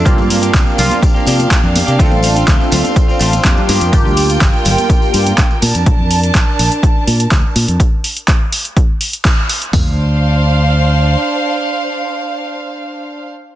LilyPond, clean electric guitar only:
\new Staff \with { instrumentName = "Clean electric guitar" } { \time 4/4 \key d \minor \tempo 4 = 124 <f bes d' g'>8. <bes d' g'>16 <f bes d' g'>8 <f bes d' g'>16 <bes d' g'>8 <bes d' g'>16 <f bes d' g'>8 <bes g'>16 <bes d' g'>8 <bes d' g'>16 | <a c' f'>8. <c' f'>16 <a c' f'>8 <a c' f'>16 <c' f'>8 <c' f'>16 <a c' f'>16 <c' f'>16 <a c' f'>16 <c' f'>16 <f bes d' f'>8 | r1 | r1 |
r1 | r1 | r1 | }